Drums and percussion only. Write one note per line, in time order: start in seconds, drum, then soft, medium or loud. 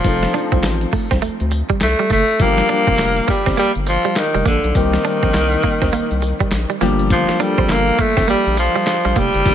0.04 kick loud
0.04 closed hi-hat medium
0.04 tambourine medium
0.04 shaker medium
0.23 snare medium
0.23 closed hi-hat medium
0.23 shaker medium
0.34 closed hi-hat medium
0.34 tambourine medium
0.34 shaker soft
0.52 kick loud
0.52 closed hi-hat medium
0.52 shaker medium
0.63 snare loud
0.63 clap medium
0.63 closed hi-hat medium
0.63 tambourine loud
0.63 shaker medium
0.81 closed hi-hat medium
0.81 shaker soft
0.93 kick loud
0.93 open hi-hat medium
0.93 shaker medium
1.11 kick loud
1.11 snare medium
1.11 closed hi-hat medium
1.11 shaker soft
1.22 closed hi-hat medium
1.22 tambourine medium
1.22 shaker medium
1.40 closed hi-hat medium
1.40 shaker medium
1.51 closed hi-hat medium
1.51 tambourine medium
1.51 shaker soft
1.69 kick loud
1.69 closed hi-hat medium
1.69 shaker medium
1.81 snare loud
1.81 clap medium
1.81 closed hi-hat medium
1.81 tambourine loud
1.81 shaker medium
1.99 closed hi-hat medium
1.99 shaker soft
2.10 kick loud
2.10 open hi-hat medium
2.10 tambourine medium
2.28 closed hi-hat medium
2.28 shaker medium
2.40 kick loud
2.40 closed hi-hat medium
2.40 tambourine medium
2.40 shaker medium
2.58 snare medium
2.58 closed hi-hat medium
2.58 shaker medium
2.69 closed hi-hat medium
2.69 tambourine medium
2.69 shaker soft
2.87 kick loud
2.87 closed hi-hat medium
2.87 shaker medium
2.98 snare loud
2.98 clap medium
2.98 closed hi-hat medium
2.98 tambourine loud
2.98 shaker medium
3.16 closed hi-hat medium
3.16 shaker medium
3.28 kick loud
3.28 closed hi-hat medium
3.28 shaker medium
3.46 kick medium
3.46 snare medium
3.46 closed hi-hat medium
3.46 shaker medium
3.57 closed hi-hat medium
3.57 tambourine medium
3.57 shaker medium
3.75 closed hi-hat medium
3.75 shaker medium
3.87 closed hi-hat medium
3.87 tambourine medium
3.87 shaker medium
4.05 closed hi-hat medium
4.05 shaker soft
4.16 snare loud
4.16 clap medium
4.16 closed hi-hat medium
4.16 tambourine loud
4.16 shaker medium
4.35 closed hi-hat medium
4.35 shaker medium
4.46 kick loud
4.46 closed hi-hat medium
4.46 tambourine medium
4.64 closed hi-hat medium
4.64 shaker medium
4.75 kick loud
4.75 closed hi-hat medium
4.75 tambourine medium
4.75 shaker medium
4.93 snare medium
4.93 closed hi-hat medium
4.93 shaker medium
5.05 closed hi-hat medium
5.05 tambourine medium
5.05 shaker soft
5.23 kick loud
5.23 closed hi-hat medium
5.23 shaker medium
5.34 snare loud
5.34 clap loud
5.34 closed hi-hat medium
5.34 tambourine loud
5.34 shaker medium
5.52 closed hi-hat medium
5.52 shaker medium
5.63 kick loud
5.63 closed hi-hat medium
5.63 shaker soft
5.81 kick medium
5.81 snare medium
5.81 closed hi-hat medium
5.81 shaker medium
5.93 closed hi-hat medium
5.93 tambourine medium
5.93 shaker medium
6.11 closed hi-hat medium
6.11 shaker medium
6.22 closed hi-hat medium
6.22 tambourine medium
6.22 shaker soft
6.40 kick loud
6.40 closed hi-hat medium
6.40 shaker medium
6.51 snare loud
6.51 clap medium
6.51 closed hi-hat medium
6.51 tambourine loud
6.51 shaker medium
6.70 closed hi-hat medium
6.70 shaker medium
6.81 closed hi-hat medium
6.81 tambourine medium
6.99 closed hi-hat medium
6.99 shaker medium
7.10 kick loud
7.10 closed hi-hat medium
7.10 tambourine medium
7.10 shaker medium
7.29 snare medium
7.29 closed hi-hat medium
7.29 shaker soft
7.40 closed hi-hat medium
7.40 tambourine medium
7.40 shaker soft
7.58 kick loud
7.58 closed hi-hat medium
7.58 shaker medium
7.69 snare loud
7.69 clap medium
7.69 closed hi-hat medium
7.69 tambourine loud
7.69 shaker medium
7.87 closed hi-hat medium
7.87 shaker medium
7.98 kick loud
7.98 closed hi-hat medium
7.98 shaker medium
8.17 kick loud
8.17 snare medium
8.17 closed hi-hat medium
8.17 shaker medium
8.28 closed hi-hat medium
8.28 tambourine medium
8.28 shaker medium
8.46 closed hi-hat medium
8.46 shaker medium
8.57 closed hi-hat medium
8.57 tambourine medium
8.57 shaker medium
8.75 closed hi-hat medium
8.75 shaker medium
8.87 snare loud
8.87 clap medium
8.87 closed hi-hat medium
8.87 tambourine loud
8.87 shaker medium
9.05 closed hi-hat medium
9.05 shaker medium
9.16 kick loud
9.16 closed hi-hat medium
9.16 tambourine medium
9.34 closed hi-hat medium
9.34 shaker medium
9.46 kick loud
9.46 closed hi-hat medium
9.46 tambourine medium
9.46 shaker medium